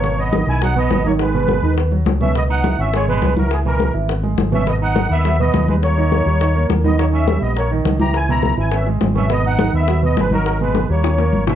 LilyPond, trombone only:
\new Staff \with { instrumentName = "Trombone" } { \time 4/4 \key gis \minor \tempo 4 = 207 ais8 b4 e'8 dis'8 b4 ais8 | gis2 r4. cis'8 | b8 dis'4 cis'8 gis8 gis4 fis8 | e8 e4 r2 cis'8 |
b8 dis'4 b4 b4 gis8 | ais2. r8 b8 | ais8 cis'4 b8 ais8 r4 g'8 | e'8 e'4 e'8 cis'8 r4 cis'8 |
b8 dis'4 b4 b8 gis8 fis8~ | fis8 gis4 ais2 cis'8 | }